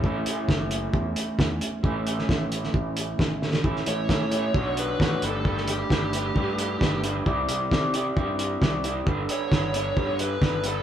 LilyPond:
<<
  \new Staff \with { instrumentName = "Lead electric guitar" } { \time 4/4 \key a \mixolydian \tempo 4 = 133 r1 | r1 | r8 cis''2 b'8 b'8 a'8 | a'8 g'2. r8 |
r1 | r8 cis''2 b'8 b'8 a'8 | }
  \new Staff \with { instrumentName = "Clean electric guitar" } { \time 4/4 \key a \mixolydian <a, e a cis' e'>1 | <a, e a cis' e'>1 | <a, e a cis' e'>4 <a, e a cis' e'>8 <a, e a cis' e'>8 <b, fis b d' fis' cis''>4 <b, fis b d' fis' cis''>8 <g a d' g' b'>8 | <g a d' g' b'>4 <g a d' g' b'>8 <g a d' g' b'>8 <g a d' g' b'>4 <g a d' g' b'>8 <g a d' g' b'>8 |
<c' e' g' d''>4 <c' e' g' d''>8 <c' e' g' d''>8 <c' e' g' d''>4 <c' e' g' d''>8 <c' e' g' d''>8 | <g b d' a' b'>4 <g b d' a' b'>8 <g b d' a' b'>8 <g b d' a' b'>4 <g b d' a' b'>8 <g b d' a' b'>8 | }
  \new Staff \with { instrumentName = "Picked electric bass" } { \clef bass \time 4/4 \key a \mixolydian a,,8 r8 fis,,4 e,8 r8 e,8 r8 | a,,4 a,,4 a,,4 a,,4 | a,,8 a,,8 a,4 b,,4 a,,8 g,,8~ | g,,4 g,,4 g,4 g,,4 |
c,8 c,8 c4 g,4 c,4 | g,,8 r8 g,,4 g,4 g,,4 | }
  \new DrumStaff \with { instrumentName = "Drums" } \drummode { \time 4/4 bd8 hh8 <bd sn>8 hh8 bd8 hh8 <bd sn>8 hh8 | bd8 hh16 sn16 <bd sn>8 hh16 sn16 bd8 hh8 <bd sn>8 sn16 sn16 | bd16 sn16 hh8 <bd sn>8 hh8 bd8 hh8 <bd sn>8 hh8 | bd16 sn16 hh8 <bd sn>8 hh8 bd8 hh8 <bd sn>8 hh8 |
bd8 hh8 <bd sn>8 hh8 bd8 hh8 <bd sn>8 hh8 | bd8 hh8 <bd sn>8 hh8 bd8 hh8 <bd sn>8 hh8 | }
>>